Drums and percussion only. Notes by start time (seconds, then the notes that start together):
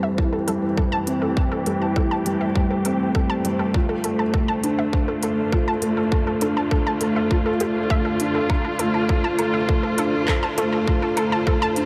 0.18 kick
0.48 closed hi-hat
0.78 kick
1.07 closed hi-hat
1.37 kick
1.66 closed hi-hat
1.96 kick
2.26 closed hi-hat
2.56 kick
2.85 closed hi-hat
3.15 kick
3.45 closed hi-hat
3.74 kick
4.04 closed hi-hat
4.34 kick
4.64 closed hi-hat
4.93 kick
5.23 closed hi-hat
5.52 kick
5.82 closed hi-hat
6.12 kick
6.41 closed hi-hat
6.71 kick
7.01 closed hi-hat
7.31 kick
7.60 closed hi-hat
7.90 kick
8.20 closed hi-hat
8.50 kick, low woodblock
8.79 closed hi-hat
9.09 kick
9.39 closed hi-hat, low woodblock
9.69 kick
9.98 closed hi-hat
10.28 kick, clap, low woodblock
10.58 closed hi-hat
10.87 kick
11.17 closed hi-hat, low woodblock
11.47 kick
11.76 closed hi-hat